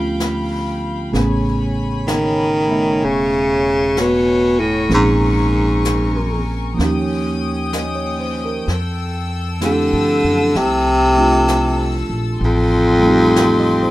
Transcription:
Already playing: D2 F3 A3 B3 C#4 D4 F4 G4 F5 G5 B5
0.20 brush sweep, snare, hi-hat pedal
1.12 A1 C#3 A3 B3 C#4 G#4 C#5 G#5 B5, brush sweep, snare
2.08 D#3, brush sweep, snare, hi-hat pedal
2.68 A3 B3 E5
3.02 E1 C#3 C#6, brush sweep
3.97 B2, brush sweep, snare, hi-hat pedal
4.60 A2
4.89 A#1 F3 A#3 C4 C#4 G#4 A#4, brush sweep, snare
4.94 G#2
5.85 brush sweep, snare, hi-hat pedal
6.74 F3 A#3
6.79 D#2 C#4 D#4 G5 D#6, brush sweep, snare
6.84 G4
7.73 D#5, brush sweep, snare, hi-hat pedal
7.96 C#5
8.20 C5
8.45 A#4
8.67 F2 A4 E6, brush sweep, snare
9.61 F3 A3 C4 E4 G4, brush sweep, snare, hi-hat pedal
9.65 D3
9.93 G2
10.24 F#2
10.55 C2 C3 A5, brush sweep, snare
11.16 A3 D4 F4
11.48 brush sweep, snare, hi-hat pedal
12.10 A#1
12.41 A1 D#5 G5 C6, brush sweep
12.45 F2
12.99 G3 A3
13.05 C4 D#4
13.10 G4
13.36 F5, brush sweep, snare, hi-hat pedal
13.60 D#5
13.83 C5

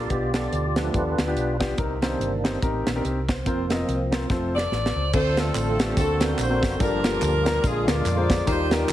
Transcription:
Already playing: F4 G4 D5
0.10 B1 B2 B3 D4 F4 G4, kick, closed hi-hat
0.34 B3 D4 F4 G4 A4 D5, snare, closed hi-hat
0.52 D2, closed hi-hat
0.76 F3 A3 B3 D4 F4 A4 B4, snare, closed hi-hat
0.93 D#2 B3 D4 F4 A4, kick, closed hi-hat
1.18 D2, snare, closed hi-hat
1.27 B3 D4 F4 G4
1.36 B1, closed hi-hat
1.60 B3 D4 F4 G4, kick, snare, closed hi-hat
1.78 C2 C3 C4 D#4 G4 A#4, kick, closed hi-hat
2.02 D#3 A#3 C4 D4 D#4 G4 C5, snare, closed hi-hat
2.20 G1, closed hi-hat
2.44 C4 D#4 G4 C5, snare, closed hi-hat
2.62 A1 C4 D#4 G4 A#4, kick, closed hi-hat
2.87 A#1 D#3 A#3 D4, snare, closed hi-hat
2.95 C4 D#4 G4 A#4
3.04 C2 A#4, closed hi-hat
3.29 C5, kick, snare, closed hi-hat
3.46 F1 F3 A#3 C4 F4 A#4 C5, kick, closed hi-hat
3.70 C4 F4 A#4 D#5, snare, closed hi-hat
3.88 C2, closed hi-hat
4.12 C4 F4 A#4 C5, snare, closed hi-hat
4.29 F1 F3 A3 C4 F4 A4 C5, kick, snare
4.54 F4 A4 D5, snare
4.71 A1 D5, snare
4.86 snare
4.96 C#2 C5
5.13 D2 D3 A3 C4 D4 F4 A4 C5, kick, crash, tambourine
5.37 A3 C4 D4 F4 A4, snare, closed hi-hat, tambourine
5.55 A1, clap, closed hi-hat, tambourine
5.79 A3 C4 D4 F4 G4, snare, closed hi-hat, tambourine
5.97 D2 D3 A#3 C4 F#4 A4, kick, closed hi-hat, tambourine
6.20 A#3 C4 D4 F#4 A4 C5, snare, closed hi-hat, tambourine
6.38 A#1 F#4 A4 C5, clap, closed hi-hat, tambourine
6.49 A#3 C4 D4 F#4 C5
6.63 F#1, kick, snare, closed hi-hat, tambourine
6.79 G1 G2 F3 G3 A#3 D4 F4 G4 A4 A#4, kick, closed hi-hat, tambourine
7.03 A#3 D4 F4 G4 A4, snare, closed hi-hat, tambourine
7.22 D2, clap, closed hi-hat, tambourine
7.45 A#3 D4 F4 G4 A#4, snare, closed hi-hat, tambourine
7.63 A#1 A#2 D3 G#3 D4 F4 G#4, kick, closed hi-hat, tambourine
7.86 D2 A#3 D4 F4 G#4 A#4 D5, snare, closed hi-hat, tambourine
8.05 F2, clap, closed hi-hat, tambourine
8.17 A#3 D4 F4 G#4 C5
8.30 kick, snare, closed hi-hat, tambourine
8.46 D#2 D#3 G3 D4 D#4 F4 G4 A#4 C5, kick, closed hi-hat, tambourine
8.71 D4 D#4 F4 G4 A#4, snare, closed hi-hat, tambourine
8.89 C2, clap, closed hi-hat, tambourine

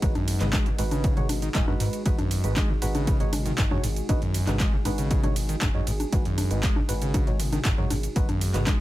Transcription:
Already playing: G#3 D#4 F#4 B4
0.02 G#1 G#2 G#3 D#4 F#4 B4, kick, closed hi-hat, ride, shaker
0.15 F#2, closed hi-hat, high conga
0.28 open hi-hat, ride, shaker
0.41 G#1 G#2 G#3 D#4 F#4 B4, clap, closed hi-hat, mid tom, shaker
0.53 G#3, kick, clap, closed hi-hat, ride, high conga, shaker
0.66 G#2, closed hi-hat
0.79 G#1 G#2 G#3 D#4 F#4 B4, open hi-hat, ride, shaker
0.91 C#3, closed hi-hat, high conga, shaker
1.04 kick, closed hi-hat, ride, shaker
1.17 G#1 G#2 G#3 D#4 F#4 C#5, closed hi-hat, mid tom
1.29 open hi-hat, ride, high conga, shaker
1.42 D#3, closed hi-hat, shaker
1.55 D#1 G#2 G#3 D#4 F#4 G#4, kick, clap, closed hi-hat, ride, shaker
1.68 F#2 G#3 D#4 F#4 B4, high conga
1.80 G#2, open hi-hat, ride, shaker
1.93 closed hi-hat, shaker
2.06 G#1 G#2 G#3 D#4 F#4 G#4 B4, kick, closed hi-hat, ride, shaker
2.19 F#2, closed hi-hat, high conga
2.31 open hi-hat, ride, shaker
2.44 G#1 G#2 G#3 D#4 F#4 B4, closed hi-hat, shaker
2.56 G#3, kick, clap, closed hi-hat, ride, high conga, shaker
2.69 G#2
2.82 G#1 G#2 G#3 D#4 F#4 B4, open hi-hat, ride, shaker
2.95 C#3, closed hi-hat, high conga, shaker
3.07 kick, closed hi-hat, ride, shaker
3.20 G#1 G#2 G#3 D#4 F#4 C#5, closed hi-hat
3.33 open hi-hat, mid tom, ride, high conga, shaker
3.46 D#3, closed hi-hat, mid tom, shaker
3.58 F#1 G#2, kick, clap, closed hi-hat, ride, shaker
3.71 F#2 G#3 D#4 F#4 C#5, mid tom, high conga
3.84 G#1 G#2, open hi-hat, ride, shaker
3.96 closed hi-hat, shaker
4.09 G#1 G#2 G#3 D#4 F#4 B4, kick, closed hi-hat, ride, high conga, shaker
4.22 F#2, closed hi-hat
4.34 open hi-hat, ride, shaker
4.47 G#1 G#2 G#3 D#4 F#4 B4, clap, closed hi-hat, mid tom, high conga, shaker
4.60 G#3, kick, clap, closed hi-hat, ride, shaker
4.73 G#2
4.85 G#1 G#2 G#3 D#4 F#4 B4, open hi-hat, ride, high conga, shaker
4.98 C#3, closed hi-hat, shaker
5.11 kick, closed hi-hat, ride, shaker
5.23 G#1 G#2 G#3 D#4 F#4 C#5, closed hi-hat, mid tom, high conga
5.36 open hi-hat, ride, shaker
5.49 D#3, closed hi-hat, shaker
5.61 F#1 G#2, kick, clap, closed hi-hat, ride, high conga, shaker
5.74 F#2 G#3 D#4 F#4 C#5
5.87 G#1 G#2, open hi-hat, ride, shaker
6.00 closed hi-hat, high conga, shaker
6.12 G#1 G#2 G#3 D#4 F#4 B4, kick, closed hi-hat, ride, shaker
6.25 F#2, closed hi-hat
6.38 open hi-hat, ride, high conga, shaker
6.51 G#1 G#2 G#3 D#4 F#4 B4, closed hi-hat, shaker
6.63 G#3, kick, clap, closed hi-hat, ride, shaker
6.76 G#2, high conga
6.89 G#1 G#2 G#3 D#4 F#4 B4, open hi-hat, ride, shaker
7.02 C#3, closed hi-hat, shaker
7.14 kick, closed hi-hat, ride, high conga, shaker
7.27 G#1 G#2 G#3 D#4 F#4 C#5, closed hi-hat
7.40 open hi-hat, mid tom, ride, shaker
7.53 D#3, closed hi-hat, mid tom, high conga, shaker
7.65 F#1 G#2, kick, clap, closed hi-hat, ride, shaker
7.78 F#2 G#3 D#4 F#4 C#5, mid tom
7.90 G#1 G#2, open hi-hat, ride, high conga, shaker
8.03 closed hi-hat, shaker
8.16 G#1 G#2 G#3 D#4 F#4 B4, kick, closed hi-hat, ride, shaker
8.29 F#2, closed hi-hat, high conga
8.41 open hi-hat, ride, shaker
8.54 G#1 G#2 G#3 D#4 F#4 B4, clap, closed hi-hat, mid tom, shaker
8.67 G#3, kick, clap, closed hi-hat, ride, high conga, shaker

